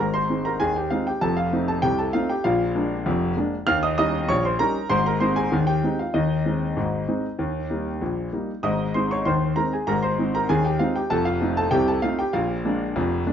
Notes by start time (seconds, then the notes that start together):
0.00 G#1 G#2 A#4 A#5
0.14 C5 C6
0.30 G#3 C4 D#4
0.45 A#4 A#5
0.60 D#2 D#3 G#4 G#5
0.76 G4 G5
0.90 G#3 C4 D#4 F4 F5
1.07 G4 G5
1.21 F1 F2 A4 A5
1.37 F4 F5
1.53 A3 C4 D#4
1.68 A4 A5
1.82 C2 C3 G4 G5
1.98 A4 A5
2.13 A3 C4 D#4 F4 F5
2.29 G4 G5
2.44 A#1 A#2 F4 F5
2.75 G#3 A#3 D4
3.06 F1 F2
3.37 G#3 A#3 D4
3.67 D#2 D#3 F5 F6
3.83 D#5 D#6
3.98 G3 C#4 D#4 D#5 D#6
4.29 A#1 A#2 C#5 C#6
4.45 C5 C6
4.59 G3 C#4 D#4 A#4 A#5
4.90 G#1 G#2 C5 C6
5.06 A#4 A#5
5.20 G#3 C4 D#4 C5 C6
5.36 G#4 G#5
5.52 D#2 D#3
5.67 G4 G5
5.84 G#3 C4 D#4
5.99 F4 F5
6.14 D#2 D#3 D#4 D#5
6.46 G#3 C4 D#4
6.76 G#1 G#2
7.08 G#3 C4 D#4
7.39 D#2 D#3
7.70 G3 A#3 D#4
8.01 A#1 A#2
8.32 G3 A#3 D#4
8.63 G#1 G#2 D#5 D#6
8.94 G#3 C4 D#4 C5 C6
9.11 C#5 C#6
9.25 D#2 D#3 C5 C6
9.56 G#3 C4 D#4 A#4 A#5
9.73 G#4 G#5
9.87 G#1 G#2 A#4 A#5
10.03 C5 C6
10.18 G#3 C4 D#4
10.35 A#4 A#5
10.49 D#2 D#3 G#4 G#5
10.65 G4 G5
10.79 G#3 C4 D#4 F4 F5
10.96 G4 G5
11.10 F1 F2 A4 A5
11.25 F4 F5
11.41 A3 C4 D#4
11.57 A4 A5
11.71 C2 C3 G4 G5
11.88 A4 A5
12.02 A3 C4 D#4 F4 F5
12.19 G4 G5
12.33 A#1 A#2 F4 F5
12.65 G#3 A#3 D4
12.96 F1 F2
13.26 G#3 A#3 D4